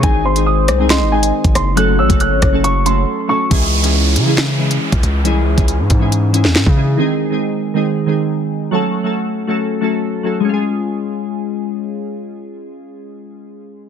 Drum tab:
HH |x--x--x-x--x-xx-|x--xx-x-x-x-----|x--x--x-x--x-xx-|x--xx-x-x-x-----|
SD |------r-o-----r-|------r---------|--------o-------|-----------oo---|
BD |o------------o--|---o--o---------|o------------o--|---o--o------o--|

HH |----------------|----------------|----------------|----------------|
SD |----------------|----------------|----------------|----------------|
BD |----------------|----------------|----------------|----------------|